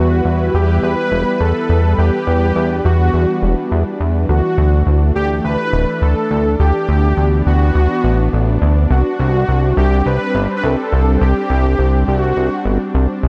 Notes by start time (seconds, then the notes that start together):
Already playing: E2 E3 G3 B3 E4 F#4 B4
0.25 E2
0.54 E2 G4
0.83 E2 B4
1.12 E1
1.40 E2 A4
1.69 E2
1.98 E2 D4 G4
2.27 E2
2.56 E2
2.85 E2 F#4
3.14 E2
3.42 E1
3.71 E2
4.00 E2
4.29 D2 A3 F#4
4.58 D2
4.87 D2
5.15 D2 G4
5.44 D2 B4
5.73 D1
6.02 D2 A4
6.31 D2
6.59 D2 B3 G4
6.89 D2
7.17 D2
7.46 D2 F#4
7.75 D2
8.04 A1
8.33 A1
8.62 D2
8.90 C2 G3 C4 F#4
9.19 C2
9.48 C2
9.77 C2 G4
10.06 C2 B4
10.35 G1
10.57 B4
10.64 C2 A4
10.93 C2
11.21 C2 G4
11.50 C2
11.79 C2
12.08 C2 F#4
12.37 C2
12.65 G1
12.95 C2
13.23 C2